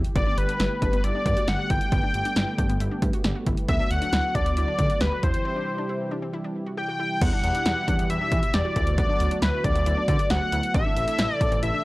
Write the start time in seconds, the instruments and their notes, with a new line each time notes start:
Already playing: analog synth pad C3 E3 G3 E4 G4
0.04 closed hi-hat
0.16 analog synth bass G1, analog synth pad D3 G3 A3 B3, synth arpeggio sound B3, analog synth lead D5, kick, closed hi-hat
0.27 synth arpeggio sound D4
0.38 analog synth bass G1, analog synth lead B4, closed hi-hat
0.49 synth arpeggio sound D4, closed hi-hat
0.60 analog synth bass G1, synth arpeggio sound E4, snare, closed hi-hat
0.82 analog synth bass G1, synth arpeggio sound D4, analog synth lead B4, kick, closed hi-hat
0.93 analog synth bass G1, synth arpeggio sound B3, closed hi-hat
1.04 analog synth bass G1, synth arpeggio sound E4, analog synth lead D5, closed hi-hat
1.15 synth arpeggio sound D4
1.26 analog synth bass G2, kick, closed hi-hat
1.37 synth arpeggio sound F#4, closed hi-hat
1.48 analog synth bass G1, synth arpeggio sound G4, analog synth lead F#5, snare, closed hi-hat
1.59 synth arpeggio sound F#4
1.70 analog synth bass G1, synth arpeggio sound E4, analog synth lead G5, kick, closed hi-hat
1.81 closed hi-hat
1.92 analog synth bass G1, synth arpeggio sound B3, kick, closed hi-hat
2.03 synth arpeggio sound D4
2.14 analog synth bass G1, closed hi-hat
2.25 synth arpeggio sound D4, closed hi-hat
2.36 analog synth bass G1, synth arpeggio sound E4, snare, closed hi-hat
2.58 analog synth bass G1, synth arpeggio sound D4, kick, closed hi-hat
2.69 analog synth bass G1, synth arpeggio sound B3, closed hi-hat
2.80 analog synth bass G1, synth arpeggio sound E4, closed hi-hat
2.91 synth arpeggio sound D4
3.02 analog synth bass G2, kick, closed hi-hat
3.13 synth arpeggio sound F#4, closed hi-hat
3.24 analog synth bass G1, synth arpeggio sound G4, snare, closed hi-hat
3.35 synth arpeggio sound F#4
3.46 analog synth bass G1, synth arpeggio sound E4, kick, closed hi-hat
3.57 closed hi-hat
3.68 analog synth bass D2, analog synth pad D3 F#3 F#4, synth arpeggio sound B3, analog synth lead E5, kick, closed hi-hat
3.80 synth arpeggio sound D4
3.91 analog synth bass D2, analog synth lead F#5, closed hi-hat
4.02 synth arpeggio sound D4, closed hi-hat
4.13 analog synth bass D2, synth arpeggio sound E4, snare, closed hi-hat
4.35 analog synth bass D2, synth arpeggio sound D4, analog synth lead D5, kick, closed hi-hat
4.46 analog synth bass D2, synth arpeggio sound B3, closed hi-hat
4.57 analog synth bass D2, synth arpeggio sound E4, analog synth lead D5, closed hi-hat
4.68 synth arpeggio sound D4
4.79 analog synth bass D3, kick, closed hi-hat
4.90 synth arpeggio sound F#4, closed hi-hat
5.01 analog synth bass D2, synth arpeggio sound G4, analog synth lead B4, snare, closed hi-hat
5.12 synth arpeggio sound F#4
5.23 analog synth bass E2, analog synth pad C3 E3 G3 E4 G4, synth arpeggio sound E4, analog synth lead C5, kick, closed hi-hat
5.34 closed hi-hat
5.45 synth arpeggio sound C4
5.56 synth arpeggio sound D4
5.78 synth arpeggio sound D4
5.89 synth arpeggio sound E4
6.11 synth arpeggio sound D4
6.22 synth arpeggio sound C4
6.33 synth arpeggio sound E4
6.44 synth arpeggio sound D4
6.66 synth arpeggio sound F#4
6.77 synth arpeggio sound G4, analog synth lead G5
6.88 synth arpeggio sound F#4
7.00 synth arpeggio sound E4
7.21 analog synth bass E2, analog synth pad B2 E3 G3 E4 G4, synth arpeggio sound B3, analog synth lead F#5, kick, closed hi-hat, crash
7.33 synth arpeggio sound D4
7.44 analog synth bass E2, closed hi-hat
7.55 synth arpeggio sound D4, closed hi-hat
7.66 analog synth bass E2, synth arpeggio sound E4, snare, closed hi-hat
7.88 analog synth bass E2, synth arpeggio sound D4, kick, closed hi-hat
7.99 analog synth bass E2, synth arpeggio sound B3, closed hi-hat
8.10 analog synth bass E2, synth arpeggio sound E4, analog synth lead E5, closed hi-hat
8.21 synth arpeggio sound D4
8.32 analog synth bass E3, kick, closed hi-hat
8.43 synth arpeggio sound E4, closed hi-hat
8.54 analog synth bass E2, synth arpeggio sound G4, analog synth lead D5, snare, closed hi-hat
8.65 synth arpeggio sound F#4
8.76 analog synth bass D2, analog synth pad D3 F#3 A3 B3 F#4, synth arpeggio sound E4, kick, closed hi-hat
8.87 closed hi-hat
8.98 synth arpeggio sound B3, analog synth lead D5, kick, closed hi-hat
9.09 synth arpeggio sound D4
9.20 analog synth bass D2, closed hi-hat
9.31 synth arpeggio sound D4, closed hi-hat
9.42 analog synth bass D2, synth arpeggio sound E4, analog synth lead B4, snare, closed hi-hat
9.64 analog synth bass D2, synth arpeggio sound D4, analog synth lead D5, kick, closed hi-hat
9.75 analog synth bass D2, synth arpeggio sound B3, closed hi-hat
9.86 analog synth bass D2, synth arpeggio sound E4, closed hi-hat
9.97 synth arpeggio sound D4
10.08 analog synth bass D3, kick, closed hi-hat
10.19 synth arpeggio sound F#4, closed hi-hat
10.30 analog synth bass D2, synth arpeggio sound G4, analog synth lead F#5, snare, closed hi-hat
10.41 synth arpeggio sound F#4
10.52 analog synth bass D2, synth arpeggio sound E4, closed hi-hat
10.63 closed hi-hat
10.74 analog synth bass A1, analog synth pad C3 E3 E4 A4, synth arpeggio sound C4, analog synth lead E5, kick, closed hi-hat
10.85 synth arpeggio sound D4
10.96 analog synth bass A1, closed hi-hat
11.08 synth arpeggio sound D4, closed hi-hat
11.19 analog synth bass A1, synth arpeggio sound E4, snare, closed hi-hat
11.34 analog synth lead D5
11.41 analog synth bass A1, synth arpeggio sound D4, kick, closed hi-hat
11.52 analog synth bass A1, synth arpeggio sound C4, closed hi-hat
11.63 analog synth bass A1, synth arpeggio sound E4, analog synth lead E5, closed hi-hat
11.74 synth arpeggio sound D4